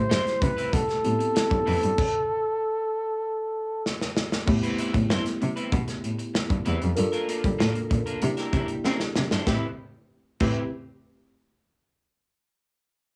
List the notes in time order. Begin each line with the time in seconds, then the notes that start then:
Already playing: G3 A3 E4 G4 C5
0.09 G2 G3 C4 E4 C5, snare, closed hi-hat
0.25 muted clean electric guitar stroke, snare, closed hi-hat
0.41 C3 B4, muted clean electric guitar stroke, kick, closed hi-hat
0.57 G3 C4 E4 B4, closed hi-hat
0.72 B2 A4, muted clean electric guitar stroke, kick, closed hi-hat
0.88 muted clean electric guitar stroke, snare, closed hi-hat
1.04 A2 B3 C4 E4 G4, closed hi-hat
1.19 muted clean electric guitar stroke, closed hi-hat
1.35 muted clean electric guitar stroke, snare, closed hi-hat
1.50 G2, muted clean electric guitar stroke, kick, closed hi-hat
1.66 F2 G3 C4 E4 B4, open hi-hat
1.82 G2, muted clean electric guitar stroke, closed hi-hat
1.98 kick, crash
3.86 snare
4.02 snare
4.17 snare
4.32 snare
4.46 A2 A3 B3 E4 G4, muted clean electric guitar stroke, kick, crash
4.63 G3 C4 E4 B4, closed hi-hat
4.78 G3 C4 E4 B4, closed hi-hat
4.94 A2, muted clean electric guitar stroke, kick, closed hi-hat
5.10 G2 G3 C4 E4 C5, snare
5.25 muted clean electric guitar stroke, snare, closed hi-hat
5.41 C3, muted clean electric guitar stroke, closed hi-hat
5.56 G3 C4 E4 B4, closed hi-hat
5.72 B2, muted clean electric guitar stroke, kick, closed hi-hat
5.88 muted clean electric guitar stroke, snare, closed hi-hat
6.04 A2, closed hi-hat
6.19 muted clean electric guitar stroke, closed hi-hat
6.34 muted clean electric guitar stroke, snare
6.50 G2, muted clean electric guitar stroke, kick, closed hi-hat
6.65 E2 G3 C4 E4 B4, closed hi-hat
6.81 F2, muted clean electric guitar stroke, closed hi-hat
6.96 G2 D4 F4 A4 A#4, muted clean electric guitar stroke, closed hi-hat
7.12 A#3 D4 F4 A#4, closed hi-hat
7.28 A#3 D4 F4 A#4, closed hi-hat
7.43 G3, muted clean electric guitar stroke, kick, closed hi-hat
7.59 A2 A#3 D4 F4 A#4, snare
7.75 muted clean electric guitar stroke, closed hi-hat
7.90 A#2, muted clean electric guitar stroke, kick, closed hi-hat
8.06 A#3 D4 F4 A#4, closed hi-hat
8.21 C3 A#3 D4 E4 G4, muted clean electric guitar stroke, closed hi-hat
8.37 G3 D4 E4 A#4, snare, closed hi-hat
8.53 C3 G3 D4 E4 A#4, kick, closed hi-hat
8.68 muted clean electric guitar stroke, closed hi-hat
8.84 G3 C4 D4 E4 A#4, snare
9.00 muted clean electric guitar stroke, snare
9.16 C3, muted clean electric guitar stroke, snare
9.31 G2 G3 D4 E4 C5, snare
9.47 A2 E3 G3 C4 E4 G4 B4, kick, snare
10.40 A2 E3 G3 C4 E4 G4 B4, kick, crash